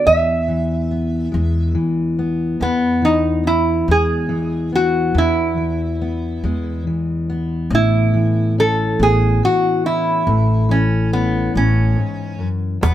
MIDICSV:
0, 0, Header, 1, 5, 480
1, 0, Start_track
1, 0, Key_signature, 4, "major"
1, 0, Tempo, 850099
1, 36, Time_signature, 6, 3, 24, 8
1, 7309, End_track
2, 0, Start_track
2, 0, Title_t, "Resonator guitar played with a steel bar"
2, 0, Program_c, 0, 25
2, 37, Note_on_c, 0, 76, 85
2, 974, Note_off_c, 0, 76, 0
2, 1482, Note_on_c, 0, 59, 69
2, 1721, Note_on_c, 0, 63, 72
2, 1726, Note_off_c, 0, 59, 0
2, 1958, Note_off_c, 0, 63, 0
2, 1960, Note_on_c, 0, 64, 75
2, 2182, Note_off_c, 0, 64, 0
2, 2210, Note_on_c, 0, 68, 81
2, 2661, Note_off_c, 0, 68, 0
2, 2685, Note_on_c, 0, 66, 80
2, 2924, Note_off_c, 0, 66, 0
2, 2926, Note_on_c, 0, 64, 80
2, 3859, Note_off_c, 0, 64, 0
2, 4374, Note_on_c, 0, 64, 86
2, 4824, Note_off_c, 0, 64, 0
2, 4855, Note_on_c, 0, 69, 86
2, 5094, Note_off_c, 0, 69, 0
2, 5097, Note_on_c, 0, 68, 86
2, 5333, Note_off_c, 0, 68, 0
2, 5335, Note_on_c, 0, 66, 84
2, 5565, Note_off_c, 0, 66, 0
2, 5567, Note_on_c, 0, 64, 76
2, 6049, Note_on_c, 0, 61, 73
2, 6057, Note_off_c, 0, 64, 0
2, 6284, Note_off_c, 0, 61, 0
2, 6286, Note_on_c, 0, 59, 68
2, 6506, Note_off_c, 0, 59, 0
2, 6534, Note_on_c, 0, 61, 73
2, 7044, Note_off_c, 0, 61, 0
2, 7245, Note_on_c, 0, 59, 77
2, 7309, Note_off_c, 0, 59, 0
2, 7309, End_track
3, 0, Start_track
3, 0, Title_t, "Steel-string acoustic guitar"
3, 0, Program_c, 1, 25
3, 0, Note_on_c, 1, 59, 55
3, 30, Note_on_c, 1, 40, 63
3, 271, Note_on_c, 1, 52, 47
3, 513, Note_off_c, 1, 59, 0
3, 513, Note_on_c, 1, 59, 44
3, 744, Note_on_c, 1, 56, 46
3, 979, Note_off_c, 1, 52, 0
3, 986, Note_on_c, 1, 52, 54
3, 1228, Note_off_c, 1, 59, 0
3, 1235, Note_on_c, 1, 59, 49
3, 1441, Note_off_c, 1, 56, 0
3, 1442, Note_off_c, 1, 52, 0
3, 1462, Note_off_c, 1, 40, 0
3, 1468, Note_on_c, 1, 40, 57
3, 1703, Note_on_c, 1, 52, 48
3, 1933, Note_off_c, 1, 59, 0
3, 1940, Note_on_c, 1, 59, 47
3, 2193, Note_on_c, 1, 56, 51
3, 2419, Note_off_c, 1, 52, 0
3, 2421, Note_on_c, 1, 52, 53
3, 2665, Note_off_c, 1, 59, 0
3, 2668, Note_on_c, 1, 59, 44
3, 2886, Note_off_c, 1, 56, 0
3, 2900, Note_off_c, 1, 40, 0
3, 2907, Note_on_c, 1, 40, 66
3, 3146, Note_off_c, 1, 52, 0
3, 3148, Note_on_c, 1, 52, 45
3, 3394, Note_off_c, 1, 59, 0
3, 3396, Note_on_c, 1, 59, 50
3, 3640, Note_on_c, 1, 56, 52
3, 3876, Note_off_c, 1, 52, 0
3, 3878, Note_on_c, 1, 52, 51
3, 4117, Note_off_c, 1, 59, 0
3, 4119, Note_on_c, 1, 59, 51
3, 4330, Note_off_c, 1, 56, 0
3, 4353, Note_off_c, 1, 40, 0
3, 4356, Note_on_c, 1, 45, 66
3, 4591, Note_off_c, 1, 52, 0
3, 4593, Note_on_c, 1, 52, 51
3, 4844, Note_off_c, 1, 59, 0
3, 4846, Note_on_c, 1, 61, 51
3, 5091, Note_on_c, 1, 59, 57
3, 5323, Note_off_c, 1, 52, 0
3, 5326, Note_on_c, 1, 52, 57
3, 5560, Note_off_c, 1, 61, 0
3, 5567, Note_on_c, 1, 61, 48
3, 5774, Note_off_c, 1, 61, 0
3, 5792, Note_off_c, 1, 45, 0
3, 5799, Note_on_c, 1, 45, 65
3, 5815, Note_off_c, 1, 59, 0
3, 6032, Note_off_c, 1, 52, 0
3, 6035, Note_on_c, 1, 52, 50
3, 6282, Note_on_c, 1, 61, 48
3, 6508, Note_off_c, 1, 45, 0
3, 6515, Note_on_c, 1, 45, 55
3, 6754, Note_on_c, 1, 44, 56
3, 6757, Note_off_c, 1, 45, 0
3, 6993, Note_off_c, 1, 44, 0
3, 6995, Note_on_c, 1, 42, 52
3, 7212, Note_off_c, 1, 61, 0
3, 7232, Note_off_c, 1, 42, 0
3, 7234, Note_on_c, 1, 40, 63
3, 7309, Note_off_c, 1, 40, 0
3, 7309, Note_off_c, 1, 52, 0
3, 7309, End_track
4, 0, Start_track
4, 0, Title_t, "Upright bass"
4, 0, Program_c, 2, 32
4, 36, Note_on_c, 2, 40, 82
4, 733, Note_off_c, 2, 40, 0
4, 756, Note_on_c, 2, 40, 81
4, 984, Note_off_c, 2, 40, 0
4, 1472, Note_on_c, 2, 40, 85
4, 2172, Note_off_c, 2, 40, 0
4, 2190, Note_on_c, 2, 40, 83
4, 2421, Note_off_c, 2, 40, 0
4, 2905, Note_on_c, 2, 40, 86
4, 3609, Note_off_c, 2, 40, 0
4, 3634, Note_on_c, 2, 40, 77
4, 3863, Note_off_c, 2, 40, 0
4, 4350, Note_on_c, 2, 33, 95
4, 5052, Note_off_c, 2, 33, 0
4, 5079, Note_on_c, 2, 33, 83
4, 5307, Note_off_c, 2, 33, 0
4, 5798, Note_on_c, 2, 33, 90
4, 6496, Note_off_c, 2, 33, 0
4, 6524, Note_on_c, 2, 33, 80
4, 6749, Note_off_c, 2, 33, 0
4, 7241, Note_on_c, 2, 28, 83
4, 7309, Note_off_c, 2, 28, 0
4, 7309, End_track
5, 0, Start_track
5, 0, Title_t, "Cajon"
5, 7244, Note_on_c, 9, 36, 86
5, 7244, Note_on_c, 9, 38, 29
5, 7301, Note_off_c, 9, 36, 0
5, 7301, Note_off_c, 9, 38, 0
5, 7309, End_track
0, 0, End_of_file